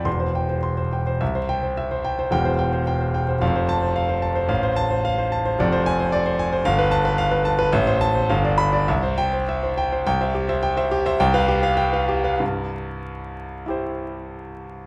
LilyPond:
<<
  \new Staff \with { instrumentName = "Grand piano" } { \time 2/4 \key c \major \tempo 4 = 106 << { c'''8 r4. | r8 g''8 r4 | g''8 r4. | r8 a''8 r4 |
r8 a''8 r4 | r8 aes''8 r4 | r8 a''8 r4 | r8 a''8 r8 b''8 |
r8 g''8 r4 | g''8 r4. | g''8 r4. | r2 |
<e' g' c''>2 | } \\ { r16 c''16 g''16 c''16 c'''16 c''16 g''16 c''16 | e''16 c''8 c''16 e''16 c''16 g''16 c''16 | r16 c''16 g''16 c''16 g''16 c''16 g''16 c''16 | f''16 c''8 c''16 f''16 c''16 a''16 c''16 |
f''16 c''8 c''16 f''16 c''16 a''16 c''16 | d''16 c''8 c''16 d''16 c''16 aes''16 c''16 | f''16 b'8 b'16 f''16 b'16 a''16 b'16 | e''16 c''8 c''16 f''16 d''8 d''16 |
e''16 c''8 c''16 e''16 c''16 g''16 c''16 | r16 <c'' e''>16 g'16 <c'' e''>16 g''16 <c'' e''>16 g'16 <c'' e''>16 | r16 <b' f''>16 g'16 <b' f''>16 g''16 <b' f''>16 g'16 <b' f''>16 | r2 |
r2 | } >> }
  \new Staff \with { instrumentName = "Grand piano" } { \clef bass \time 2/4 \key c \major <e,, e,>2 | c,2 | <e,, e,>2 | <f,, f,>2 |
a,,2 | <f,, f,>2 | g,,2 | a,,4 g,,4 |
c,2 | c,2 | c,2 | <c, g,>2~ |
<c, g,>2 | }
>>